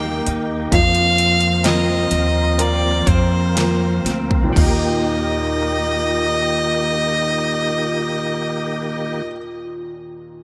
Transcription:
Already playing: upright bass D#2, upright piano D#3 D#4 G4 A#4, tonewheel organ D#3 A#3 G4, clean electric guitar D#3 A#3 D#4, violin G5
0.27 upright bass D#2, clean electric guitar D#4, closed hi-hat
0.71 upright bass F2, clean electric guitar F2, upright piano F3, tonewheel organ F3 C4, violin F5, kick, closed hi-hat
0.95 closed hi-hat
1.18 clean electric guitar C4, closed hi-hat
1.41 closed hi-hat
1.64 clean electric guitar A#3, upright piano C4 F4 A#4, violin D#5, snare, closed hi-hat
2.11 upright bass D#2, clean electric guitar C4, closed hi-hat
2.58 clean electric guitar A#3, upright piano C4 F4 A#4, violin D5, closed hi-hat
3.07 upright bass F2, clean electric guitar C4, violin C5, kick, closed hi-hat
3.55 clean electric guitar A#3, upright piano C4 F4 A#4, snare, closed hi-hat
4.05 upright bass D2, clean electric guitar C4, snare, closed hi-hat
4.31 kick
4.44 upright piano D#2
4.48 upright piano A#2
4.53 upright bass D#2, clean electric guitar D#3, upright piano D#3, tonewheel organ D#3 A#3 G4, violin D#5, kick, crash
4.58 clean electric guitar A#3 D#4, upright piano A#3
4.64 upright piano G4, clean electric guitar G4
4.69 upright piano A#4

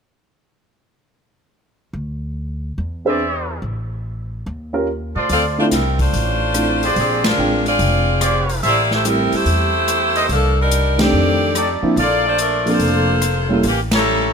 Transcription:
1.93 upright bass D2
2.78 upright bass E2
3.05 grand piano C4 D4 G#4 B4, trumpet section G#4 C5 D5 E5
3.62 upright bass A1
4.46 upright bass D#2
4.73 grand piano C#4 F4 G4 A#4
5.15 upright bass A2, trumpet section F4 A4 C5 D5
5.29 upright bass D2, saxophone section C4 F4 A4 D5, open hi-hat
5.58 grand piano A3 C4 D4 E4 F4, saxophone section A3 D4 F4 C5
5.71 upright bass C2, saxophone section G3 C4 E4 A#4, snare, closed hi-hat
5.99 saxophone section A3 D4 F4 C5, kick, open hi-hat
6.13 upright bass A1, open hi-hat
6.54 grand piano A3 C4 D4 E4 F4, cross-stick, closed hi-hat
6.83 trumpet section G4 G#4 C5 D5, open hi-hat
6.96 upright bass A#1, saxophone section F3 C4 D4 G#4, open hi-hat
7.24 saxophone section G#3 D4 F4 A#4, snare, ride
7.38 upright bass A1, grand piano G#3 C4 D4 F4 G5
7.66 saxophone section C4 F4 G#4 D5, open hi-hat
7.79 upright bass F1, open hi-hat
8.21 trumpet section G4 G#4 C5 D5, cross-stick, closed hi-hat
8.49 open hi-hat
8.62 upright bass A1, saxophone section A#3 E4 G4 D5, trumpet section G4 A4 C5 E5, open hi-hat
8.91 saxophone section A3 E4 G4 C5, snare
9.05 grand piano G3 A3 C4 E4 G4, saxophone section G3 C4 E4 A#4, closed hi-hat
9.32 saxophone section A3 E4 G4 C5, muted upright bass stroke, open hi-hat
9.46 upright bass E2, open hi-hat
9.88 cross-stick, closed hi-hat
10.16 trumpet section D#4 A#4 C5 D#5, open hi-hat
10.29 upright bass C2, saxophone section F3 A#3 D4 A4, open hi-hat
10.60 saxophone section G3 D4 D#4 A#4
10.71 closed hi-hat
10.98 grand piano D#3 A3 C4 D4 G4, saxophone section C4 G4 A4 D5, snare, ride
11.13 upright bass F2
11.55 trumpet section D#4 G4 A4 D5, cross-stick, closed hi-hat
11.82 grand piano F3 A#3 C4 D4 E4, muted upright bass stroke
11.96 upright bass A#1, saxophone section A#3 F4 A4 D5, trumpet section F4 A4 D5, open hi-hat
12.26 saxophone section A3 D4 F4 C5
12.38 saxophone section F3 A3 D4 A#4, closed hi-hat
12.66 grand piano F3 A#3 C4 D4 A4, saxophone section A#3 F4 A4 C5, open hi-hat
12.79 upright bass F1, open hi-hat
13.22 cross-stick, closed hi-hat
13.49 grand piano G3 A#3 C#4 E4 A4
13.63 upright bass A1, saxophone section E3 A#3 C#4 G4, open hi-hat
13.91 saxophone section G3 C#4 E4 A4, trumpet section G4 A4 C#5 A#5, snare, ride

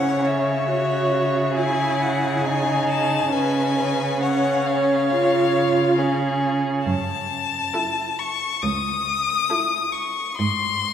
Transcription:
Already playing: cello C#3, viola C#4, violin C#5 F#5
0.27 violin E5
0.70 viola F#4, violin C#5
1.57 viola E4, violin G#4 G#5
2.02 violin F#5
2.44 viola D#4, violin G#5
2.89 violin A5
3.32 cello C#3, viola C#4, violin B4 G#5
3.78 violin B4
4.22 viola C#4, violin C#5 F#5
4.65 violin F5
5.11 viola F4
5.55 viola F4
5.98 viola C#4, violin G#4
6.86 cello F#2, violin A5
7.74 viola E4, violin A4
8.19 violin C#6
8.63 cello C#2, violin D#6
9.50 viola E4, violin A4
9.92 violin C#6
10.38 cello G#2, violin C6

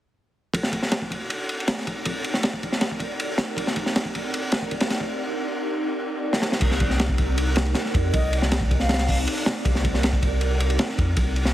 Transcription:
0.54 kick, ride
0.63 snare
0.72 kick, ride
0.82 snare
0.92 snare, ride
1.02 kick
1.10 kick, ride
1.30 ride
1.49 ride
1.60 ride
1.68 snare, ride
1.77 snare
1.87 kick, ride
2.05 kick, ride
2.24 ride
2.34 snare
2.43 snare, ride
2.53 kick
2.62 ambient pad C4 D#4 G4 A#4 D5, kick, ride
2.72 snare
2.81 snare, ride
2.91 kick
3.00 kick, ride
3.20 ride
3.38 snare, ride
3.57 kick, ride
3.67 snare
3.76 kick, ride
3.86 snare
3.96 snare, ride
4.05 kick
4.15 kick, ride
4.34 ride
4.52 snare, ride
4.62 kick
4.71 kick, ride
4.80 snare, ride
4.90 snare, ride
5.00 kick
5.66 ambient pad C4 D#4 G4 A#4 D5
6.33 snare
6.42 snare
6.52 snare
6.61 sub bass C2, kick, crash, ride
6.71 snare
6.80 kick, ride
6.90 snare
7.00 snare, ride
7.09 kick
7.18 kick, ride
7.38 ride
7.56 snare, ride
7.66 ride
7.75 snare, ride
7.85 snare
7.94 sub bass F2, kick, ride
8.13 sub bass C2, flute D#5, kick, ride
8.33 ride
8.42 snare
8.52 snare, ride
8.61 kick
8.70 ambient pad C4 D#4 G4 A#4 D5, kick, ride
8.80 flute F5, snare
8.89 snare, ride
8.94 snare, ride
8.99 snare, ride
9.08 kick, open hi-hat
9.18 ride
9.27 ride
9.38 ride
9.46 snare, ride
9.65 sub bass C2, kick, ride
9.75 snare
9.84 kick, ride
9.94 snare
10.03 snare, ride
10.13 kick
10.22 kick, ride
10.41 ride
10.60 ride
10.70 ride
10.79 snare, ride
10.89 snare
10.98 sub bass F2, kick, ride
11.17 sub bass C2, kick, ride
11.36 ride
11.45 snare

